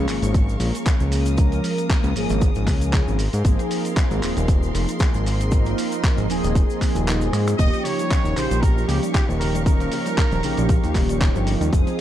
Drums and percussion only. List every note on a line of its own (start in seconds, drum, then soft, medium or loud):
0.08 clap medium
0.08 open hi-hat medium
0.08 shaker medium
0.23 closed hi-hat medium
0.23 shaker soft
0.23 shaker medium
0.34 kick loud
0.34 closed hi-hat medium
0.34 shaker medium
0.34 shaker soft
0.49 shaker soft
0.60 open hi-hat loud
0.60 shaker medium
0.75 closed hi-hat medium
0.75 shaker medium
0.75 shaker soft
0.86 kick loud
0.86 clap loud
0.86 closed hi-hat medium
0.86 shaker medium
0.86 shaker soft
1.00 shaker soft
1.12 open hi-hat loud
1.12 shaker medium
1.26 closed hi-hat medium
1.26 shaker medium
1.26 shaker soft
1.37 kick loud
1.37 closed hi-hat medium
1.37 shaker medium
1.37 shaker soft
1.52 closed hi-hat soft
1.52 shaker soft
1.64 open hi-hat loud
1.64 shaker medium
1.78 closed hi-hat medium
1.78 shaker medium
1.78 shaker soft
1.90 kick loud
1.90 clap loud
1.90 closed hi-hat medium
1.90 shaker soft
1.90 shaker medium
2.04 closed hi-hat soft
2.04 shaker soft
2.16 open hi-hat medium
2.16 shaker medium
2.29 closed hi-hat medium
2.29 shaker medium
2.29 shaker soft
2.41 kick loud
2.41 closed hi-hat medium
2.41 shaker medium
2.41 shaker soft
2.55 closed hi-hat soft
2.55 shaker soft
2.67 kick medium
2.67 clap medium
2.67 open hi-hat loud
2.67 shaker medium
2.81 closed hi-hat medium
2.81 shaker medium
2.81 shaker soft
2.93 kick loud
2.93 clap loud
2.93 closed hi-hat medium
2.93 shaker medium
2.93 shaker soft
3.07 shaker soft
3.19 open hi-hat medium
3.19 shaker medium
3.33 closed hi-hat medium
3.33 shaker soft
3.33 shaker medium
3.45 kick loud
3.45 closed hi-hat medium
3.45 shaker soft
3.45 shaker medium
3.59 closed hi-hat soft
3.59 shaker soft
3.71 open hi-hat loud
3.71 shaker medium
3.85 closed hi-hat medium
3.85 shaker soft
3.85 shaker medium
3.96 kick loud
3.96 clap loud
3.96 closed hi-hat medium
3.96 shaker medium
3.96 shaker soft
4.11 closed hi-hat soft
4.11 shaker soft
4.23 clap medium
4.23 open hi-hat medium
4.23 shaker medium
4.37 closed hi-hat medium
4.37 shaker soft
4.37 shaker medium
4.48 kick loud
4.48 closed hi-hat medium
4.48 shaker medium
4.48 shaker soft
4.63 shaker soft
4.75 open hi-hat loud
4.75 shaker medium
4.88 closed hi-hat medium
4.88 shaker medium
4.88 shaker soft
4.99 kick loud
4.99 closed hi-hat medium
4.99 shaker medium
5.01 clap loud
5.01 shaker soft
5.14 shaker soft
5.26 open hi-hat medium
5.26 shaker medium
5.40 closed hi-hat medium
5.40 shaker medium
5.40 shaker soft
5.51 kick loud
5.51 closed hi-hat medium
5.51 shaker medium
5.51 shaker soft
5.65 closed hi-hat soft
5.65 shaker soft
5.78 open hi-hat loud
5.78 shaker medium
5.92 closed hi-hat medium
5.92 shaker medium
5.92 shaker soft
6.04 kick loud
6.04 clap loud
6.04 closed hi-hat medium
6.04 shaker medium
6.04 shaker soft
6.18 closed hi-hat soft
6.18 shaker soft
6.30 open hi-hat medium
6.30 shaker medium
6.44 closed hi-hat medium
6.44 shaker medium
6.44 shaker soft
6.55 kick loud
6.55 closed hi-hat medium
6.55 shaker medium
6.55 shaker soft
6.70 shaker soft
6.81 kick medium
6.81 clap medium
6.81 open hi-hat loud
6.81 shaker medium
6.95 closed hi-hat medium
6.95 shaker medium
6.95 shaker soft
7.07 clap loud
7.07 closed hi-hat medium
7.07 shaker medium
7.07 shaker soft
7.21 closed hi-hat soft
7.21 shaker soft
7.33 finger snap medium
7.33 open hi-hat medium
7.33 shaker medium
7.47 finger snap medium
7.47 closed hi-hat medium
7.47 shaker medium
7.47 shaker soft
7.59 kick loud
7.59 closed hi-hat medium
7.59 shaker medium
7.59 shaker soft
7.73 closed hi-hat soft
7.73 shaker soft
7.85 open hi-hat loud
7.85 shaker medium
7.99 closed hi-hat medium
7.99 shaker medium
7.99 shaker soft
8.10 kick loud
8.10 clap loud
8.10 closed hi-hat medium
8.10 shaker medium
8.10 shaker soft
8.25 closed hi-hat soft
8.25 shaker soft
8.37 clap medium
8.37 open hi-hat loud
8.37 shaker medium
8.51 closed hi-hat medium
8.51 shaker medium
8.51 shaker soft
8.63 kick loud
8.63 closed hi-hat medium
8.63 shaker soft
8.63 shaker medium
8.77 shaker soft
8.89 open hi-hat loud
8.89 shaker medium
9.03 closed hi-hat medium
9.03 shaker soft
9.03 shaker medium
9.14 kick loud
9.14 clap loud
9.14 closed hi-hat medium
9.14 shaker soft
9.14 shaker medium
9.29 shaker soft
9.41 open hi-hat loud
9.41 shaker medium
9.55 closed hi-hat medium
9.55 shaker soft
9.55 shaker medium
9.66 kick loud
9.66 closed hi-hat medium
9.66 shaker soft
9.66 shaker medium
9.80 closed hi-hat soft
9.80 shaker soft
9.92 open hi-hat loud
9.92 shaker medium
10.06 closed hi-hat medium
10.06 shaker soft
10.06 shaker medium
10.18 kick loud
10.18 clap loud
10.18 closed hi-hat medium
10.18 shaker soft
10.18 shaker medium
10.31 closed hi-hat soft
10.31 shaker soft
10.43 open hi-hat medium
10.43 shaker medium
10.57 closed hi-hat medium
10.57 shaker soft
10.57 shaker medium
10.69 kick loud
10.69 closed hi-hat medium
10.69 shaker soft
10.69 shaker medium
10.84 closed hi-hat soft
10.84 shaker soft
10.95 kick medium
10.95 clap medium
10.95 open hi-hat loud
10.95 shaker medium
11.09 closed hi-hat medium
11.09 shaker soft
11.09 shaker medium
11.21 kick loud
11.21 clap loud
11.21 closed hi-hat medium
11.21 shaker medium
11.21 shaker soft
11.35 shaker soft
11.47 open hi-hat loud
11.47 shaker medium
11.61 closed hi-hat medium
11.61 shaker soft
11.61 shaker medium
11.73 kick loud
11.73 closed hi-hat medium
11.73 shaker soft
11.73 shaker medium
11.87 closed hi-hat soft
11.87 shaker soft